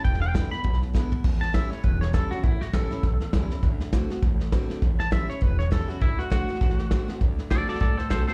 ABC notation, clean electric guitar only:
X:1
M:4/4
L:1/8
Q:"Swing" 1/4=201
K:Amix
V:1 name="Clean electric guitar"
g g2 b2 z3 | z a e c B c A F | E F A6 | z8 |
z a e c B c A F | E F F6 | z2 [Ad] [Ad] [Ad] [A=c] [Ac] [Ac] |]